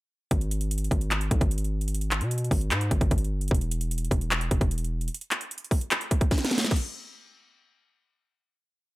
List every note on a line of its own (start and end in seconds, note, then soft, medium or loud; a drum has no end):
0.31 0.89 G#1 loud
0.31 kick loud
0.31 closed hi-hat medium
0.41 closed hi-hat medium
0.51 closed hi-hat medium
0.61 closed hi-hat medium
0.71 closed hi-hat medium
0.78 closed hi-hat medium
0.84 closed hi-hat soft
0.91 1.30 G#1 loud
0.91 kick loud
0.91 closed hi-hat medium
1.01 closed hi-hat medium
1.11 clap loud
1.11 closed hi-hat medium
1.21 closed hi-hat medium
1.31 1.41 B1 loud
1.31 kick loud
1.31 closed hi-hat medium
1.41 2.23 G#1 loud
1.41 kick loud
1.41 closed hi-hat soft
1.51 closed hi-hat medium
1.58 closed hi-hat medium
1.64 closed hi-hat soft
1.81 closed hi-hat soft
1.88 closed hi-hat medium
1.95 closed hi-hat medium
2.01 closed hi-hat medium
2.11 clap medium
2.11 closed hi-hat medium
2.21 2.50 B2 loud
2.21 closed hi-hat medium
2.31 closed hi-hat medium
2.38 closed hi-hat medium
2.44 closed hi-hat soft
2.51 2.73 G#1 loud
2.51 kick loud
2.51 open hi-hat medium
2.61 closed hi-hat medium
2.71 2.90 G#2 loud
2.71 clap loud
2.71 closed hi-hat medium
2.81 closed hi-hat medium
2.91 3.01 G#1 loud
2.91 kick loud
2.91 closed hi-hat medium
3.01 3.11 G#1 loud
3.01 kick loud
3.01 closed hi-hat soft
3.11 3.33 G#1 loud
3.11 kick medium
3.11 closed hi-hat medium
3.18 closed hi-hat medium
3.24 closed hi-hat soft
3.31 3.50 G1 loud
3.41 closed hi-hat soft
3.48 4.09 E1 loud
3.48 kick loud
3.48 closed hi-hat medium
3.54 closed hi-hat medium
3.61 closed hi-hat medium
3.71 closed hi-hat medium
3.81 closed hi-hat medium
3.91 closed hi-hat medium
3.98 closed hi-hat medium
4.05 closed hi-hat soft
4.11 4.50 E1 loud
4.11 kick loud
4.11 closed hi-hat medium
4.21 closed hi-hat medium
4.31 clap loud
4.31 closed hi-hat medium
4.41 closed hi-hat medium
4.51 4.60 E1 loud
4.51 kick loud
4.51 closed hi-hat medium
4.61 5.09 E1 loud
4.61 kick loud
4.61 closed hi-hat soft
4.71 closed hi-hat medium
4.78 closed hi-hat medium
4.84 closed hi-hat soft
5.01 closed hi-hat soft
5.08 closed hi-hat medium
5.14 closed hi-hat medium
5.21 closed hi-hat medium
5.31 clap medium
5.31 closed hi-hat medium
5.41 closed hi-hat medium
5.51 closed hi-hat medium
5.58 closed hi-hat medium
5.64 closed hi-hat soft
5.71 kick loud
5.71 open hi-hat medium
5.81 closed hi-hat medium
5.91 clap loud
5.91 closed hi-hat medium
6.01 closed hi-hat medium
6.11 kick loud
6.11 closed hi-hat medium
6.21 kick loud
6.21 closed hi-hat medium
6.31 kick loud
6.31 snare medium
6.31 closed hi-hat soft
6.38 snare medium
6.38 closed hi-hat medium
6.45 snare medium
6.45 closed hi-hat medium
6.51 snare medium
6.51 closed hi-hat medium
6.58 snare loud
6.58 closed hi-hat medium
6.61 snare loud
6.61 closed hi-hat medium
6.65 closed hi-hat medium
6.66 closed hi-hat medium
6.71 kick loud
6.71 closed hi-hat medium
6.71 crash medium
6.76 closed hi-hat medium